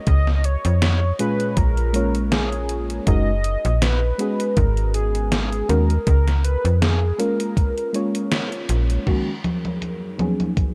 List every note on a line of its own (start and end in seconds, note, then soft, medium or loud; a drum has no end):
0.07 0.57 C#2 loud
0.07 0.47 D#5 loud
0.07 kick loud
0.07 closed hi-hat medium
0.27 snare soft
0.44 1.19 C#5 loud
0.44 closed hi-hat medium
0.65 1.13 F2 loud
0.65 closed hi-hat soft
0.82 snare loud
0.82 closed hi-hat medium
1.19 1.90 A#2 medium
1.19 1.90 G#3 medium
1.19 1.90 C#4 medium
1.19 1.91 F4 medium
1.19 1.91 G#4 medium
1.19 1.59 B4 loud
1.19 closed hi-hat medium
1.40 closed hi-hat medium
1.57 3.00 A#1 medium
1.57 2.32 A#4 loud
1.57 kick loud
1.57 closed hi-hat medium
1.77 closed hi-hat soft
1.93 3.04 G#3 medium
1.93 3.05 A#3 medium
1.93 3.05 C#4 medium
1.93 3.05 F4 medium
1.93 3.06 C#5 medium
1.93 closed hi-hat medium
2.15 closed hi-hat soft
2.32 2.86 G#4 loud
2.32 snare loud
2.32 closed hi-hat medium
2.52 closed hi-hat soft
2.69 closed hi-hat medium
2.90 closed hi-hat soft
3.06 3.57 F#1 loud
3.06 3.30 G#3 medium
3.06 3.30 C#4 medium
3.06 3.30 D#4 medium
3.06 3.31 F#4 medium
3.06 3.31 A#4 medium
3.06 3.83 D#5 loud
3.06 kick loud
3.06 closed hi-hat medium
3.44 closed hi-hat medium
3.65 4.13 A#1 loud
3.65 closed hi-hat medium
3.82 4.58 B4 loud
3.82 snare loud
3.82 closed hi-hat medium
4.18 5.65 G#3 medium
4.18 5.65 B3 medium
4.18 5.66 C#4 medium
4.18 5.66 F#4 medium
4.18 5.66 G#4 medium
4.18 closed hi-hat medium
4.40 closed hi-hat soft
4.57 5.63 G#1 loud
4.57 4.94 A#4 loud
4.57 kick loud
4.57 closed hi-hat medium
4.77 closed hi-hat soft
4.94 5.29 G#4 medium
4.94 closed hi-hat medium
5.15 closed hi-hat medium
5.31 5.70 G#4 medium
5.31 snare loud
5.31 closed hi-hat medium
5.52 closed hi-hat soft
5.69 5.98 D#2 loud
5.69 5.93 G#3 medium
5.69 5.93 B3 medium
5.69 5.93 C#4 medium
5.69 5.93 F#4 medium
5.69 6.06 A#4 medium
5.69 5.93 A#4 medium
5.69 closed hi-hat medium
5.90 closed hi-hat medium
6.06 6.57 C#2 loud
6.06 6.42 A#4 medium
6.06 kick loud
6.06 closed hi-hat medium
6.28 snare soft
6.28 closed hi-hat soft
6.44 6.79 B4 medium
6.44 closed hi-hat medium
6.65 7.12 F2 loud
6.65 closed hi-hat medium
6.81 7.20 G#4 medium
6.81 snare loud
6.81 closed hi-hat medium
7.18 7.90 G#3 medium
7.18 7.90 A#3 medium
7.18 7.90 C#4 medium
7.18 7.90 F4 medium
7.18 8.32 A#4 medium
7.18 7.91 A#4 medium
7.18 closed hi-hat medium
7.40 closed hi-hat medium
7.57 kick loud
7.57 closed hi-hat medium
7.78 closed hi-hat soft
7.93 9.04 G#3 medium
7.93 9.05 A#3 medium
7.93 9.05 C#4 medium
7.93 9.05 F4 medium
7.93 9.06 C#5 medium
7.93 closed hi-hat medium
8.15 closed hi-hat medium
8.32 snare loud
8.32 closed hi-hat medium
8.52 closed hi-hat soft
8.69 8.98 A#1 medium
8.69 closed hi-hat medium
8.90 closed hi-hat medium
9.06 9.30 D#3 medium
9.06 10.18 F#3 medium
9.06 9.30 G#3 medium
9.06 9.31 A#3 medium
9.06 9.31 C#4 medium
9.06 10.74 D#4 medium
9.06 9.31 F#4 medium
9.06 10.18 G#4 medium
9.06 10.18 A#4 medium
9.06 kick loud
9.06 closed hi-hat medium
9.06 crash medium
9.06 high conga soft
9.44 closed hi-hat medium
9.44 high conga medium
9.65 closed hi-hat soft
9.65 high conga soft
9.82 closed hi-hat medium
9.82 high conga soft
10.18 10.74 F#3 medium
10.18 10.74 G#3 medium
10.18 10.74 A#3 medium
10.18 10.74 B3 medium
10.18 10.74 C#4 medium
10.18 10.74 F#4 medium
10.18 10.74 G#4 medium
10.18 10.74 A#4 medium
10.18 10.74 C#5 medium
10.18 closed hi-hat medium
10.18 high conga medium
10.40 closed hi-hat soft
10.40 high conga soft
10.57 kick loud
10.57 closed hi-hat medium
10.57 high conga soft